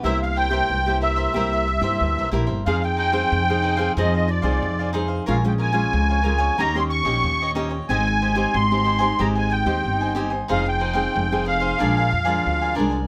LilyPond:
<<
  \new Staff \with { instrumentName = "Accordion" } { \time 4/4 \key f \dorian \tempo 4 = 92 e''16 f''16 g''4 e''2 r8 | f''16 g''16 g''4. ees''16 ees''16 d''4 r8 | f''16 g''16 aes''4. bes''16 c'''16 des'''4 r8 | aes''4 c'''4 bes''16 aes''16 g''4 r8 |
f''16 g''4~ g''16 f''2 r8 | }
  \new Staff \with { instrumentName = "Cavaquinho" } { \time 4/4 \key f \dorian <e' bes' c'' e''>16 r16 <e' bes' c'' e''>16 <bes' c'' e''>8 <bes' c'' e''>16 <e' bes' c'' e''>16 <bes' c'' e''>16 <e' bes' c'' e''>16 <bes' c'' e''>16 r16 <bes' c'' e''>8 <bes' c'' e''>16 <e' bes' c'' e''>16 <bes' c'' e''>16 | <ees' aes' c'' f''>16 r16 <ees' aes' c'' f''>16 <aes' c'' f''>8 <aes' c'' f''>16 <ees' aes' c'' f''>16 <aes' c'' f''>16 <ees' aes' c'' f''>16 <aes' c'' f''>16 r16 <aes' c'' f''>8 <aes' c'' f''>16 <ees' aes' c'' f''>16 <aes' c'' f''>16 | <bes' des'' f'' aes''>16 r16 <bes' des'' f'' aes''>16 <des'' f'' aes''>8 <des'' f'' aes''>16 <bes' des'' f'' aes''>16 <des'' f'' aes''>16 <ees' g' des'' ees''>16 <g' des'' ees''>16 r16 <g' des'' ees''>8 <g' des'' ees''>16 <ees' g' des'' ees''>16 <g' des'' ees''>16 | <g' c'' ees'' aes''>16 r16 <g' c'' ees'' aes''>16 <c'' ees'' aes''>8 <c'' ees'' aes''>16 <g' c'' ees'' aes''>16 <c'' ees'' aes''>16 <g' c'' ees'' aes''>16 <c'' ees'' aes''>16 r16 <c'' ees''>8 <c'' ees'' aes''>16 <g' c'' ees'' aes''>16 <c'' ees'' aes''>16 |
<ees' aes' c'' f''>16 r16 <ees' aes' c'' f''>16 <aes' c'' f''>8 <aes' c'' f''>16 <ees' aes' c'' f''>16 <aes' c'' f''>16 <d' bes' d'' aes''>16 <bes' d'' aes''>16 r16 <bes' d'' aes''>8 <bes' d'' aes''>16 <d' bes' d'' aes''>16 <bes' d'' aes''>16 | }
  \new Staff \with { instrumentName = "Nylon-string guitar" } { \time 4/4 \key f \dorian << { <bes e' g'>8. <bes e' g'>8 <bes e' g'>8. <bes e' g'>8 r16 <bes e' g'>8. <bes e' g'>8 | <c' ees' aes'>8. <c' ees' aes'>8 <c' ees' aes'>8 <c' ees' aes'>16 <c' ees' aes'>8 r16 <c' ees' aes'>8. <c' ees' aes'>8 | <aes des' f'>16 <aes des' f'>8 <aes des' f'>8. <aes des' f'>8 <bes des' g'>16 <bes des' g'>8 <bes des' g'>8. <bes des' g'>16 r16 | <c' ees'>8 r16 <c' ees' g'>8 <c' ees' g'>8 <c' ees' g'>16 <c' ees' g'>8. <c' ees' g'>8. <c' ees' g'>16 r16 |
<c' ees' aes'>8 r16 <c' ees' aes'>8 <c' ees' aes'>8. <f aes d'>8 r16 <f aes d'>8. <f aes d'>16 r16 | } \\ { c4 g,4 c4 g,4 | f4 c4 f4 c4 | bes,4 f,4 ees4 bes,4 | aes4 ees4 aes4 ees4 |
f4 c4 bes,4 f,4 | } >> }
  \new Staff \with { instrumentName = "Upright bass" } { \clef bass \time 4/4 \key f \dorian c,4 c,4 c,8. g,16 d,16 c,16 bes,,16 g,,16 | f,4 f,4 f,8. c,16 f,4 | bes,,4 des,4 ees,8. bes,,16 ees,4 | aes,,4 aes,,4 aes,,8. ees,16 g,,4 |
f,,4 f,,4 bes,,8 f,8 d,8 c,8 | }
>>